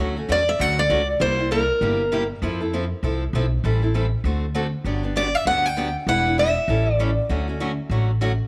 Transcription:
Already playing: D2
0.00 D3 F#3 A3 C#4 F#4
0.16 A3 C#4 F#4
0.29 E2 D3 F#3 A3 C#4 F#4 D5
0.49 E5
0.59 D2 D3 F#3 A3 C#4 F#4 F#5
0.79 D5
0.89 C#2 D3 F#3 A3 C#4 F#4
1.20 C2 C3 G3 A#3 E4 G4 C5
1.38 A#3 E4 G4
1.51 C3 G3 A#3 E4 G4 A#4
1.81 G1 C3 G3 A#3 E4 G4
2.12 C3 G3 A#3 E4 G4
2.42 F2 F3 C4 E4 A4
2.60 C4 E4 A4
2.73 F3 C4 E4 A4
3.03 C2 F3 C4 E4 A4
3.33 B1 F3 C4 E4 A4
3.64 A1 E3 G3 C4 E4 A4
3.82 C4 E4 A4
3.94 E3 G3 C4 E4 A4
4.24 D2 D3 A3 C4 F#4 A4
4.55 D3 A3 C4 F#4 A4
4.84 G1 D3 F#3 B3 D4 G4
5.03 B3 D4 G4
5.16 D3 F#3 B3 D4 G4 D5
5.35 E5
5.45 D2 D3 F#3 B3 D4 G4 F#5
5.66 G5
5.77 D3 F#3 B3 D4 G4
6.07 E1 E3 G3 D4 E4 B4 F#5
6.26 D4 E4 B4
6.38 E3 G3 D4 E4 B4 E5
6.68 A1 E3 G3 C#4 E4 A4
6.93 D5
6.99 E3 G3 C#4 E4 A4
7.29 D2 D3 F#3 A3 C#4 F#4
7.48 A3 C#4 F#4
7.60 D3 F#3 A3 C#4 F#4
7.89 A1 D3 F#3 A3 C#4 F#4
8.21 D3 F#3 A3 C#4 F#4

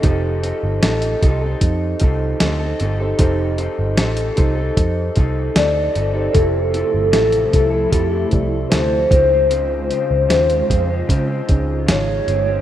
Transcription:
0.02 F1 F3 C4 D#4 G4 A4 C5, kick, closed hi-hat
0.42 F3 C4 D#4 A4, closed hi-hat
0.63 G1
0.81 A1 F3 C4 D#4 A4, snare, closed hi-hat
1.02 closed hi-hat
1.21 C2 F3 C4 D#4 G4 A4 D#5, kick, closed hi-hat
1.41 C4 D#4 A4
1.61 F2, kick, closed hi-hat
2.00 C2 F3 C4 D#4, kick, closed hi-hat
2.04 A4
2.40 D2 F3 C4 D#4 A4, snare, closed hi-hat
2.59 C4 D#4 A4
2.79 G1 F3 C4 D#4 A4, closed hi-hat
2.99 D#4 G4 A4 C5
3.03 C4
3.18 F1 F3 C4 D#4 G4 A4 C5, kick, closed hi-hat
3.57 F3 C4 D#4 A4, closed hi-hat
3.79 G1
3.96 A1 F3 C4 D#4 A4, snare, closed hi-hat
4.17 closed hi-hat
4.36 C2 F3 C4 D#4 G4 A4 C5, kick, closed hi-hat
4.55 D#4 A4
4.59 C4
4.77 F2, kick, closed hi-hat
5.15 C2 F3 C4 D#4 A4, kick, closed hi-hat
5.55 D2 F3 C4 D#4 A4 D5, snare, closed hi-hat
5.74 D#4 A4
5.78 C4
5.93 G1 F3 C4 D#4 A4, closed hi-hat
6.13 D#4 G4 A4 C5
6.18 C4
6.32 F1 C3 F3 A3 C4 E4 G4 A4, kick, closed hi-hat
6.37 C5
6.71 F3 C4 E4, closed hi-hat
6.76 A4
6.94 G1
7.12 A1 F3 C4 E4 A4, snare, closed hi-hat
7.32 closed hi-hat
7.51 C2 F3 C4 E4, kick, closed hi-hat
7.55 A4
7.70 C4 E4 A4
7.89 F2 F3 C4 E4 G4, kick, closed hi-hat
7.94 A4
8.10 C4 E4 A4
8.29 C2 E4 G4 A4, kick, closed hi-hat
8.34 D5
8.69 D2 F3 C4 E4 A4 C5, snare, closed hi-hat
9.09 C#2 C#3 F3 G#3 D#4 F4 G#4 C5, kick, closed hi-hat
9.13 C4
9.30 F3 G#3 C4
9.49 C#3 F3 G#3 C4, closed hi-hat
9.89 C#3 F3 G#3 C4, closed hi-hat
10.11 C#2
10.29 D#2 C#3 F3 G#3 C4, snare, closed hi-hat
10.50 closed hi-hat
10.68 F2 C#3 F3 G#3 C4, kick, closed hi-hat
10.88 G#3 C4
10.92 F3
11.07 C#3 F3 G#3, kick, closed hi-hat
11.12 C4
11.27 G#3 C4
11.31 F3
11.48 C#2 C#4 D#4 F4 G#4, kick, closed hi-hat
11.86 G#1 C#3 F3 G#3, snare, closed hi-hat
11.91 C#5
12.26 G1 C#3 F3 G#3, closed hi-hat
12.30 C4
12.45 G#3 C4
12.49 F3

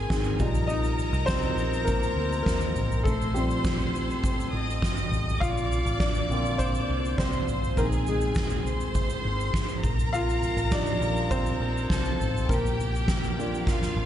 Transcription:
Already playing: D#3 G#3 A#3 C4 G#4 A#4 G#5
0.10 G#1 D#3 G#3 C4, kick, snare, ride, shaker
0.24 shaker
0.39 A#1 F3 G3 D#4 A#4 A#5, kick, floor tom, ride, shaker
0.55 floor tom, shaker
0.67 D#4 D#5, ride, shaker
0.84 shaker
0.99 floor tom, ride, shaker
1.13 C2, shaker
1.26 F3 G3 C4 D#4 C5, kick, snare, ride, shaker
1.42 shaker
1.56 A#1, ride, shaker
1.74 shaker
1.85 A#3 A#4, kick, ride, shaker
2.03 shaker
2.16 D2, ride
2.32 shaker
2.42 D#2 A#4, kick, snare, ride
2.47 A#3, shaker
2.61 shaker
2.75 A1, floor tom, ride, shaker
2.91 floor tom, shaker
3.04 A#1 A3 A4 C5 C6, kick, ride, shaker
3.21 shaker
3.34 F3 G3 A3 C4 G4, floor tom, ride, shaker
3.50 shaker
3.64 kick, snare, ride, shaker
3.80 shaker
3.95 ride, shaker
4.10 shaker
4.24 kick, ride, shaker
4.40 shaker
4.53 A1 D#5 D#6, ride
4.70 shaker
4.82 G1, kick, snare, ride, shaker
4.97 shaker
5.11 A1, floor tom, ride, shaker
5.27 floor tom, shaker
5.40 A#1 F4 D5 F5 D6, kick, ride, shaker
5.58 shaker
5.71 floor tom, ride, shaker
5.85 A1, shaker
6.00 D4 D5, kick, snare, ride, shaker
6.15 shaker
6.29 A#1 D3 A#3 C4, ride, shaker
6.45 shaker
6.58 C4 C5, kick, ride, shaker
6.75 shaker
6.89 C2, ride
7.05 shaker
7.18 C2 C4 C5 C6, kick, snare, ride, shaker
7.33 shaker
7.47 A1, floor tom, ride, shaker
7.63 floor tom, shaker
7.77 A#1 D#3 G#3 A#3 C4 G#4 A#4 G#5, kick, ride, shaker
7.92 shaker
8.07 G#3 G#4, floor tom, ride, shaker
8.21 shaker
8.35 kick, snare, ride, shaker
8.50 shaker
8.65 C5 C6, floor tom, ride, shaker
8.81 shaker
8.95 kick, ride, shaker
9.10 shaker
9.24 G#1, ride
9.40 shaker
9.54 G#1, kick, snare, ride, shaker
9.68 shaker
9.83 A#1 A#4 A#5, kick, floor tom, ride, shaker
9.99 floor tom, shaker
10.13 F4 F5, ride, shaker
10.29 shaker
10.43 floor tom, ride, shaker
10.57 A1, shaker
10.71 F3 G3 D4 D#4 D5, kick, snare, ride, shaker
10.86 shaker
11.01 A#1, ride, shaker
11.17 shaker
11.31 C4 C5, kick, ride, shaker
11.46 shaker
11.60 A#1, ride
11.77 shaker
11.90 C2 A4 A5, kick, snare, shaker
12.05 shaker
12.20 A1, floor tom, ride, shaker
12.35 floor tom, shaker
12.48 A#1 A#3 G4 A#4 G5, kick, ride, shaker
12.66 shaker
12.79 floor tom, ride, shaker
12.95 shaker
13.08 kick, snare, ride, shaker
13.24 shaker
13.37 F3 A#3 D4, ride, shaker
13.55 shaker
13.67 F4 F5, kick, snare, shaker
13.81 snare, shaker
13.96 A1

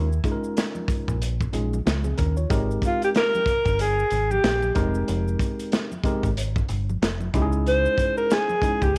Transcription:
Already playing: D#2
0.13 maracas
0.24 G#3 C#4 D#4 F4 G#4, kick, closed hi-hat, maracas
0.32 A#4
0.44 maracas
0.57 snare, closed hi-hat, maracas
0.75 high conga, maracas
0.88 kick, closed hi-hat, low conga, maracas
1.08 A#1, kick, maracas
1.22 closed hi-hat, maracas
1.41 kick, maracas
1.53 A#1 G#3 C#4 D#4 F4 G#4, closed hi-hat, low conga, maracas
1.73 high conga, maracas
1.86 C#2 G#3 F4, snare, closed hi-hat, high conga, maracas
2.04 C4 G#4, high conga, maracas
2.18 D#2 C#4 A#4, kick, closed hi-hat, low conga, maracas
2.37 F4 C#5, maracas
2.50 G#1 G#3 C4 D#4 G4 A#4, kick, closed hi-hat, maracas
2.71 maracas
2.82 kick, closed hi-hat, maracas
2.87 F4
3.02 G4, closed hi-hat, maracas
3.15 A#4, snare, closed hi-hat, maracas
3.35 high conga, maracas
3.46 kick, closed hi-hat, low conga, maracas
3.65 G1, kick, closed hi-hat, maracas
3.79 G#4, closed hi-hat, maracas
3.99 maracas
4.10 G#1, closed hi-hat, low conga, maracas
4.31 G4, high conga, maracas
4.44 A#1, snare, closed hi-hat, high conga, maracas
4.63 high conga, maracas
4.75 F1 G#3 C4 D#4 G4 A#4, kick, closed hi-hat, low conga, maracas
4.95 maracas
5.08 F1, closed hi-hat, maracas
5.28 maracas
5.39 kick, closed hi-hat, maracas
5.59 closed hi-hat, maracas
5.72 snare, closed hi-hat, maracas
5.92 high conga, maracas
6.04 G#3 C4 D#4 G4 A#4, kick, closed hi-hat, low conga, maracas
6.23 G#1, kick, closed hi-hat, maracas
6.37 closed hi-hat, maracas
6.56 kick, maracas
6.69 G1, closed hi-hat, low conga, maracas
6.89 high conga, maracas
7.01 F1, snare, closed hi-hat, high conga, maracas
7.21 high conga, maracas
7.34 C#2 G#3 C#4 D#4 E4 G4, kick, closed hi-hat, low conga, maracas
7.42 G#4
7.52 maracas
7.66 C5, closed hi-hat, maracas
7.86 maracas
7.98 kick, closed hi-hat, maracas
8.17 A#4, maracas
8.30 G#4, snare, closed hi-hat, maracas
8.49 high conga, maracas
8.62 G#3 C#4 D#4 E4 G#4, kick, closed hi-hat, low conga, maracas
8.82 C#2 G4, kick, closed hi-hat, maracas

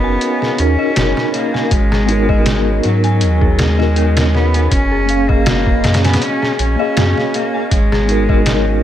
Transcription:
Already playing: F#1 B3 C#4 D#4 F#4 G#4 A#4 D#5
0.04 G#5
0.21 closed hi-hat
0.42 G#4, snare
0.56 D#2 C#4 D#4, closed hi-hat
0.60 F#4 A#4
0.79 D#5
0.96 F#1 F#4, snare, closed hi-hat
1.17 snare
1.34 A#3, closed hi-hat
1.54 G#5, snare
1.71 G#1 G#3, kick, closed hi-hat
1.92 G#4, snare
2.06 B3 D#4, closed hi-hat
2.10 F#4 A#4
2.29 D#5, kick
2.46 F#4, snare, closed hi-hat
2.83 G#2 F#3, closed hi-hat
3.04 G#5, closed hi-hat
3.21 D#2, closed hi-hat
3.41 G#4, kick
3.59 G#3, snare, closed hi-hat
3.76 B3 D#4 D#5, snare
3.80 F#4 A#4
3.96 F#4, closed hi-hat
4.17 snare, closed hi-hat
4.35 B3, snare
4.54 G#5, closed hi-hat
4.71 F#1 C#4, kick, closed hi-hat
4.92 G#4
5.06 A#3 C#4, closed hi-hat
5.10 G#4 F5
5.29 A#3 D#5, kick
5.46 F#4, snare, closed hi-hat
5.67 kick
5.84 F#2, snare, closed hi-hat
5.94 snare, closed hi-hat
6.04 B3 G#5, snare, closed hi-hat
6.13 snare, closed hi-hat
6.22 C#4, closed hi-hat
6.42 G#4, snare
6.59 A#1 C#4, closed hi-hat
6.76 A#3 C#4 D#5 F5
6.82 G#4
6.96 F#2 F#4, snare, closed hi-hat
7.18 snare
7.34 A#3, closed hi-hat
7.54 G#5
7.71 G#1 G#3, kick, closed hi-hat
7.92 G#4, snare
8.06 B3 D#4 F#4, closed hi-hat
8.12 A#4
8.29 D#5, kick
8.46 F#4, snare, closed hi-hat

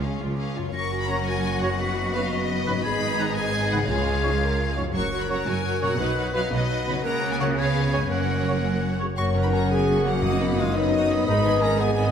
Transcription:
Already playing: C#2 C#3 F4 G#4 C#5
0.03 C#4 G#4 F5
0.21 C#2 F4 C#5
0.38 C#4 G#4 F5
0.56 F#2 F4 C#5
0.62 F#4
0.66 A#4
0.71 F#2 F#4 C#5 C#6 A#6
0.75 F#1 C#4 A#4 F#5
0.92 F#4 A#6
1.01 B5
1.08 F#2 F#3 A#3 F#4 C#5 A#5 A#6
1.27 F#4 G#5 A#6
1.45 F#4 A#6
1.61 F#2 F#3 A#3 F#4 C#5 F#5 A#6
1.71 B4
1.80 B3 F#4 B4 D#5 B6
1.97 F#4 B6
2.15 F#2 F#3 B3 D#4 F#4 B4 F5 B6
2.32 F#4 D#5 B6
2.49 F#4 B6
2.66 F#2 G#2 F#3 B3 D#4 F#4 B4 B6
2.71 D#4
2.76 G#4
2.80 B4 G#6
2.85 G#1 G#2 D#4 G#4 B5
3.19 G#2 D#3 G#3 D#4 B4 A#5
3.36 G#4 G#5 G#6
3.71 G#2 C#3 D#3 G#3 D#4 B4 F#5
3.76 C#4
3.85 G#3 F4 G#4 C#5
3.89 C#2 C#3 C#5 F5 G#6
4.24 G#2 F3 G#3 C#4 C#5
4.41 A#4
4.70 G#4
4.76 F#2 G#2 F3 G#3 C#4 F#4 C#5
4.81 A#3
4.86 F#4
4.91 F#3 F#4 A#4 C#5 C#6
4.95 F#1 F#2 A#4 F#6
5.12 F#3 F#4 A#4 C#5
5.21 B5
5.29 F#2 F#3 A#3 F#4 A#4 C#5 A#5
5.46 F#1 F#2 F#3 F#4 A#4 C#5 G#5
5.64 F#3 F#4 A#4 C#5
5.81 F#2 B2 F#3 A#3 F#4 A#4 C#5 F#5
5.87 D#4
5.91 F#4
5.96 B2 F#3 D#4 B4
6.00 B1 F#4 B4
6.17 F#3 D#4 F#4 B4
6.34 F#2 F#3 B3 D#4 F#4 B4 F5
6.52 B1 B2 F#3 D#4 F#4 B4 D#5
6.69 F#3 D#4 F#4 B4
6.87 F#2 C#3 F#3 B3 D#4 F#4 B4
6.92 C#4
6.96 F#4
7.01 C#2 C#3 A#4
7.05 A#3 C#4 F#4 A#4 A#5 F#6
7.33 G#5
7.39 C#3 F#3 A#3 F#4 C#5 F#5
7.44 C#4
7.49 G#4
7.53 B3 C#4 B4
7.58 G#4 B4 C#5 F5 G#6
7.93 F#2 C#3 G#3 B3 C#4 C#5 G#5
8.03 F#4
8.07 F#1 F#2 A#3 C#4 F#4 A#4 C#5 F#5 F#6
8.46 C#3 F#3 A#3 C#4 C#5
9.00 C#3 F#3 A#3 C#4 C#5
9.17 F#1 F#2 A#3 C#4 F#4 A#4 C#5 F#5 C#6
9.35 C#3 C#4 A#4 A#5
9.42 D#4 B4 B5
9.53 A#3 C#4 F#4 A#4 A#5 C#6
9.70 B3 C#4 F#4 G#4 A#4 G#5 A#5
9.88 A#3 F#4 C#6
10.06 A#3 C#4 F#4 A#4 F#5 A#5
10.22 F#2 B2 D#4 F#4 D#5 D#6
10.41 F#3 B3 D#4 B5
10.58 G#3 B3 D#4 F4 F#4 F5 D#6
10.74 F#2 F#3 B3 D#4 D#5 B5
10.93 D#4 F#4 D#5 D#6
11.10 B3 D#4 B5
11.27 G#1 G#2 G#3 D#4 B4 D#5 B5
11.45 D#3 B3 G#4 G#5
11.61 G#3 C#4 D#4 A#4 A#5 B5
11.79 G#2 G#3 B3 G#4 B4 D#5 G#5
11.97 G#3 D#4 D#5 B5

